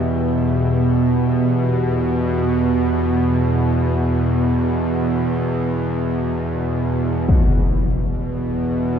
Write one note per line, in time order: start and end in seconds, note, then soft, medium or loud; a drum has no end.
0.00 7.26 E2 medium
0.00 7.26 B2 medium
0.00 7.27 B3 medium
0.00 7.26 G4 medium
0.00 7.26 E5 medium
7.27 8.99 E2 medium
7.27 8.99 B2 medium
7.27 impact medium